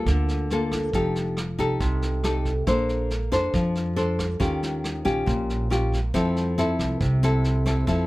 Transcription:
Already playing: A#3 F4 A4
0.06 D2 D3, kick, snare
0.28 snare
0.50 A#3 F4 A4, snare
0.71 kick, cross-stick, snare
0.93 F1 F3 D#4 G4 A4, kick, snare
1.15 snare
1.37 cross-stick, snare
1.59 C2 D#4 G4 A4, kick, snare
1.80 C2 C3, kick, snare
2.02 snare
2.24 D#4 G4 A4, cross-stick, snare
2.45 kick, snare
2.67 A#1 A#3 D4 A4 C5, kick, cross-stick, snare
2.89 snare
3.10 snare
3.32 F2 D4 A4 C5, kick, cross-stick, snare
3.54 F2 F3, kick, snare
3.75 snare
3.96 D4 A4 C5, snare
4.19 kick, cross-stick, snare
4.40 D#2 D#3 C#4 F4 G4, kick, snare
4.63 snare
4.84 cross-stick, snare
5.05 A#1 C#4 F4 G4, kick, snare
5.26 A#1 A#2, kick, snare
5.50 snare
5.70 C#4 F4 G4, cross-stick, snare
5.92 kick, snare
6.14 F2 F3 C4 E4 A4, kick, cross-stick, snare
6.36 snare
6.58 C4 E4 A4, snare
6.79 C2, kick, cross-stick, snare
7.00 C2 C3, kick, snare
7.23 C4 E4 A4, snare
7.44 snare
7.66 C4 E4 A4, kick, cross-stick, snare
7.87 F2 F3 C4 E4 A4, kick, snare

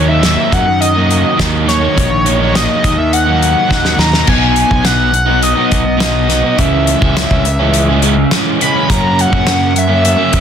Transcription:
Already playing: D#2 D#3 F#3
0.08 F#3 A#3 D#4 E5
0.23 D#3 F#3 A#3 D#4, snare, closed hi-hat
0.51 F#2 D#3 F#3 A#3 D#4 F#5, kick, closed hi-hat
0.67 F#5, muted overdriven electric guitar stroke
0.81 D#5, closed hi-hat
0.94 F#3 A#3 D#4
1.10 closed hi-hat
1.37 D#2 D#3 F#3 A#3 D#4, kick, snare, closed hi-hat
1.66 D#3 F#3 A#3 D#4 C#5, snare, closed hi-hat
1.80 F#3 A#3 D#4
1.96 A#1 D#3 F#3 A#3 D#4, kick, closed hi-hat
2.11 muted overdriven electric guitar stroke
2.25 D#3 F#3 A#3 D#4, closed hi-hat
2.39 F#3 A#3 D#4 C#5
2.53 D#3 F#3 A#3 D#4 D#5, snare, closed hi-hat
2.83 D#2 D#3 F#3 A#3 D#4, kick, closed hi-hat
2.97 E5, muted overdriven electric guitar stroke
3.13 F#5, closed hi-hat
3.26 F#3 A#3 D#4
3.42 closed hi-hat
3.68 D#2 D#3 F#3 A#3 D#4, kick, snare
3.85 snare
3.97 D#2 D#3 F#3 A#3 D#4 A#5, snare
4.12 F#3 A#3 D#4, snare
4.26 B1 B2 F#3 B3 D#4 G#5, kick, crash
4.56 closed hi-hat
4.68 B1 F#3 B3 D#4, kick
4.81 B2 F#3 B3 D#4 F#5, snare, closed hi-hat
5.12 muted overdriven electric guitar stroke, closed hi-hat
5.26 F#3 B3 D#4
5.43 D#5, closed hi-hat
5.55 F#3 B3 D#4
5.71 B1 B2 F#3 B3 D#4, kick, closed hi-hat
5.84 muted overdriven electric guitar stroke
5.98 B2 F#3 B3 D#4 D#5, snare, closed hi-hat
6.27 B2 F#3 B3 D#4, snare, closed hi-hat
6.42 F#3 B3 D#4
6.57 C#2 C#3 E3 G#3 C#4 E5, kick, closed hi-hat
6.87 closed hi-hat
7.01 C#2 E3 G#3 C#4, kick
7.15 C#3 E3 G#3 C#4, snare, closed hi-hat
7.31 C#2, kick
7.45 muted overdriven electric guitar stroke, closed hi-hat
7.59 E3 G#3 C#4
7.74 closed hi-hat
7.89 E3 G#3 C#4
8.02 C#3 E3 G#3 C#4, closed hi-hat
8.17 muted overdriven electric guitar stroke
8.31 C#3 E3 G#3 C#4, snare, closed hi-hat
8.59 C#3 E3 G#3 C#4 B5, closed hi-hat
8.75 E3 G#3 C#4
8.88 F#2 C#3 F#3 A#3 A#5, kick, closed hi-hat
8.92 C#4
9.19 F#5, closed hi-hat
9.32 F#2 F#3 A#3 C#4, kick
9.45 F#2 C#3 F#3 A#3 C#4, snare, closed hi-hat
9.74 muted overdriven electric guitar stroke, closed hi-hat
9.78 E5
9.88 F#3 A#3 C#4
10.05 closed hi-hat
10.17 F#3 A#3 C#4
10.32 F#2 C#3 F#3 A#3 C#4, kick, closed hi-hat

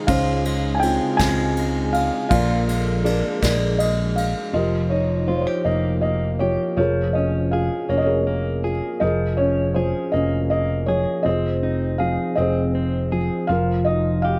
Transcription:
Already playing: C4 D#4 F4 G#4
0.07 C#2 C#3 G#3 F4 C5 F5, kick, ride
0.45 G#3, ride
0.75 G#5
0.80 C4 C#4 F4 G5, ride
1.17 C#2 G#3 C4 C#4 F4 G#5, kick, snare, ride
1.57 ride
1.93 F5, ride
2.29 A#1 D3 F3 A#3 F4 D5 F5, kick, ride
2.67 G#3, ride
3.04 D4 G#4 A#4 D5, ride
3.41 A#1 G#3 G#4 A#4 D5, kick, snare, ride
3.78 D#5, ride
4.16 F5, ride
4.53 F1 F3 G4 A#4 D#5
4.89 D#4 C#5
5.28 F3 F4 C5
5.35 C#5
5.42 C5
5.47 G4
5.64 F1 A#3 D#4 D#5
6.01 A#3 D#5
6.39 F3 G4 C#5
6.77 F1 F3 G#4 A#4 C#5
7.13 C#4 D#5
7.51 F4 G#4 F5
7.89 F1 A#3 C#4 C#5
7.98 D#5
8.02 C#5
8.06 G#4 A#4
8.27 A#3
8.63 F4 G#4
9.00 F1 F3 G#4 A#4 D#5
9.37 C#4 C#5
9.74 F3 G#4 C5
10.12 F1 A#3 C#4 D#5
10.50 A#3 D#5
10.86 F3 G#4 C#5
11.23 F1 F3 C4 D#5
11.28 G#4 C5
11.62 C4 D#4
11.98 F3 G#4 F5
12.35 F1 C4 D#5
12.40 G#4 C5
12.75 C4
13.12 F3 G#4
13.47 F1 F3 F5
13.52 A#4
13.85 D#4 D#5
14.22 G4 F5

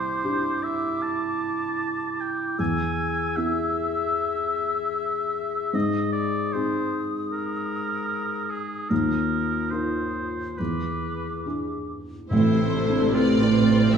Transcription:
Already playing: C2 E4 C5 D6
0.24 D4 E4 G4
0.63 E5
1.03 A5
2.21 G5
2.58 E2 G#4 G#5 E6
3.36 B3 E4 G#4 E5
5.73 G#2 D#5 D#6
6.12 D5
6.53 C4 D#4 G#4 C5
7.32 A#4
8.50 G#4
8.89 D#2 F4 A#4
9.71 D#4 F4 A#4 C5
10.58 E2 G#4 B4 D6
11.46 D4 E4 G#4
12.30 A1 A2 C3 A3 C4 E4 A4 C5
12.59 C4 E4 A4
12.71 D4
12.88 C4 E4 A4
13.12 C4 E4 F4 A4 B4 D5
13.41 C4 E4 A4
13.54 C4
13.68 C4 E4 A4
13.92 E2 D3 A4 C5 E5

